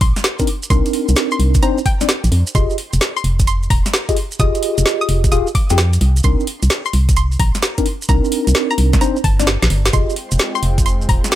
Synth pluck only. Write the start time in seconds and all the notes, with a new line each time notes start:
0.01 C6
0.70 C6
1.32 C6
1.63 A#5
1.86 G5
2.55 C6
3.16 C6
3.47 C6
3.70 A#5
4.40 D#6
5.01 D#6
5.32 D#6
5.55 D6
6.24 C6
6.86 C6
7.17 C6
7.40 A#5
8.09 A#5
8.71 A#5
9.01 A#5
9.24 A5
9.93 C6
10.55 C6
10.86 C6
11.09 A#5